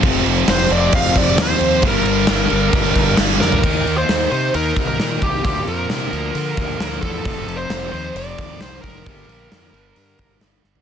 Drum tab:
CC |x-x-x-x-x-x-x-x-|x-x-x-x-x-x-x---|x---------------|----------------|
HH |----------------|----------------|--o-o-o-o-o-o-o-|o-o-o-o-o-o-o-o-|
SD |----o-------o---|----o-------o-o-|----o-------o---|----o-------o---|
FT |----------------|---------------o|----------------|----------------|
BD |o-------o-o-----|o-------o-o-----|o---------o---o-|o---------o---o-|

CC |----------------|----------------|
HH |o-o-o-o-o-o-o-o-|o-o-o-o-o-o-o---|
SD |----o-------o---|----o-------o-o-|
FT |----------------|---------------o|
BD |o---------o---o-|o---------o-----|